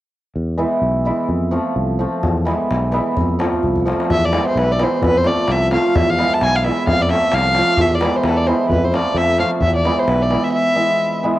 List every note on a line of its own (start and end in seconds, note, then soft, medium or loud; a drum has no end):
0.36 0.64 E2 medium
0.58 1.04 E3 medium
0.58 1.04 G#3 medium
0.58 0.76 B3 medium
0.58 0.76 E4 medium
0.82 1.10 B1 medium
1.05 1.34 E3 medium
1.05 1.34 G#3 medium
1.05 1.23 B3 soft
1.05 1.23 E4 medium
1.29 1.57 F2 medium
1.51 1.98 F3 medium
1.51 1.69 A3 medium
1.51 1.70 C4 medium
1.51 1.70 F4 medium
1.76 2.04 C2 medium
1.99 2.28 F3 medium
1.99 2.16 A3 medium
1.99 2.17 C4 medium
1.99 2.17 F4 medium
2.23 2.52 E2 medium
2.23 darbuka dum medium
2.38 darbuka tek soft
2.45 2.90 E3 medium
2.45 2.92 G#3 medium
2.45 2.64 B3 medium
2.45 2.64 E4 medium
2.45 darbuka tek medium
2.71 2.99 B1 medium
2.71 darbuka tek medium
2.83 darbuka tek soft
2.92 3.22 E3 medium
2.92 3.22 G#3 medium
2.92 3.10 B3 medium
2.92 3.11 E4 medium
2.92 darbuka tek soft
3.17 3.45 F2 medium
3.17 darbuka dum medium
3.30 darbuka tek soft
3.39 3.84 F3 medium
3.39 3.57 A3 soft
3.39 3.57 C4 medium
3.39 3.58 F4 medium
3.39 darbuka tek medium
3.53 darbuka dum soft
3.63 3.92 C2 medium
3.63 darbuka dum soft
3.76 darbuka dum soft
3.85 4.15 F3 medium
3.85 4.03 A3 soft
3.85 4.03 C4 medium
3.85 4.04 F4 medium
3.85 darbuka tek medium
4.00 darbuka tek medium
4.10 4.38 E2 medium
4.10 4.26 E5 medium
4.10 darbuka dum medium
4.24 4.47 D5 medium
4.24 darbuka tek soft
4.31 4.78 E3 medium
4.31 4.78 G#3 medium
4.31 4.50 B3 medium
4.31 4.50 E4 medium
4.31 darbuka tek medium
4.48 4.60 C5 medium
4.55 4.83 B1 medium
4.55 4.73 B4 medium
4.55 darbuka tek medium
4.72 4.85 D5 medium
4.79 5.07 E3 medium
4.79 5.07 G#3 medium
4.79 4.97 B3 medium
4.79 4.97 E4 medium
4.79 darbuka tek medium
4.83 5.04 C5 medium
4.92 darbuka tek soft
5.02 5.30 F2 medium
5.02 5.19 B4 medium
5.02 darbuka dum medium
5.15 5.28 C5 medium
5.15 darbuka tek soft
5.24 5.70 F3 medium
5.24 5.42 A3 medium
5.24 5.42 C4 medium
5.24 5.43 F4 medium
5.24 5.53 D5 medium
5.24 darbuka tek medium
5.48 5.76 C2 medium
5.48 5.73 E5 medium
5.48 darbuka tek medium
5.71 6.00 F3 medium
5.71 5.88 A3 medium
5.71 5.89 C4 medium
5.71 5.89 F4 medium
5.71 5.97 F5 medium
5.71 darbuka tek medium
5.86 darbuka tek soft
5.95 6.23 E2 medium
5.95 6.11 E5 medium
5.95 darbuka dum medium
6.08 6.35 F5 medium
6.08 darbuka tek soft
6.17 6.63 E3 medium
6.17 6.64 G#3 medium
6.17 6.35 B3 medium
6.17 6.35 E4 medium
6.17 darbuka tek medium
6.34 6.45 A5 medium
6.41 6.69 B1 medium
6.41 6.57 G#5 loud
6.41 darbuka tek medium
6.56 6.65 F5 medium
6.64 6.92 E3 medium
6.64 6.92 G#3 medium
6.64 6.81 B3 medium
6.64 6.81 E4 medium
6.64 6.87 E5 medium
6.64 darbuka tek medium
6.77 darbuka tek soft
6.87 7.15 F2 medium
6.87 7.03 F5 medium
6.87 darbuka dum medium
7.01 7.12 D5 medium
7.01 darbuka tek soft
7.09 7.55 F3 medium
7.09 7.27 A3 medium
7.09 7.27 C4 medium
7.09 7.28 F4 medium
7.09 7.36 E5 medium
7.09 darbuka tek medium
7.22 darbuka tek soft
7.32 7.61 C2 medium
7.32 7.82 F5 loud
7.32 darbuka tek medium
7.45 darbuka tek soft
7.55 7.84 F3 medium
7.55 7.73 A3 medium
7.55 7.73 C4 medium
7.55 7.73 F4 medium
7.55 darbuka tek medium
7.68 darbuka tek soft
7.77 8.06 E2 medium
7.77 7.96 E5 medium
7.77 darbuka dum medium
7.92 8.17 D5 medium
7.92 darbuka tek soft
8.01 8.46 E3 medium
8.01 8.47 G#3 medium
8.01 8.19 B3 medium
8.01 8.19 E4 medium
8.01 darbuka tek medium
8.16 8.27 C5 medium
8.23 8.51 E2 medium
8.23 8.30 B4 medium
8.23 darbuka tek medium
8.29 8.34 A4 medium
8.29 8.38 B4 medium
8.37 8.48 D5 medium
8.46 8.75 E3 medium
8.46 8.75 G#3 medium
8.46 8.65 B3 medium
8.46 8.65 E4 medium
8.46 8.69 C5 medium
8.46 darbuka tek medium
8.61 darbuka tek soft
8.69 8.97 F2 medium
8.69 8.86 B4 medium
8.69 darbuka dum medium
8.84 8.96 C5 medium
8.84 darbuka tek soft
8.92 9.37 F3 medium
8.92 9.10 A3 soft
8.92 9.10 C4 medium
8.92 9.11 F4 medium
8.92 9.18 D5 medium
8.92 darbuka tek medium
9.14 9.42 F2 medium
9.14 9.39 E5 medium
9.14 darbuka tek medium
9.38 9.67 F3 medium
9.38 9.56 A3 medium
9.38 9.56 C4 medium
9.38 9.56 F4 medium
9.38 9.50 F5 medium
9.38 darbuka tek medium
9.52 darbuka tek soft
9.60 9.88 E2 medium
9.60 9.74 E5 medium
9.60 darbuka dum medium
9.76 10.00 D5 medium
9.76 darbuka tek soft
9.84 10.29 E3 medium
9.84 10.30 G#3 medium
9.84 10.02 B3 medium
9.84 10.02 E4 medium
9.84 darbuka tek medium
9.99 10.11 C5 medium
10.08 10.35 B1 medium
10.08 10.23 B4 medium
10.08 darbuka tek medium
10.22 10.45 D5 medium
10.30 10.59 E3 medium
10.30 10.59 G#3 soft
10.30 10.48 B3 medium
10.30 10.48 E4 medium
10.30 darbuka tek medium
10.43 10.52 E5 medium
10.43 darbuka tek soft
10.52 11.18 E5 medium
10.75 11.22 E3 medium
10.75 11.23 G#3 medium
10.75 10.93 B3 medium
10.75 10.93 E4 medium
11.23 11.39 E3 medium
11.23 11.39 G#3 medium
11.23 11.39 B3 medium
11.23 11.39 E4 medium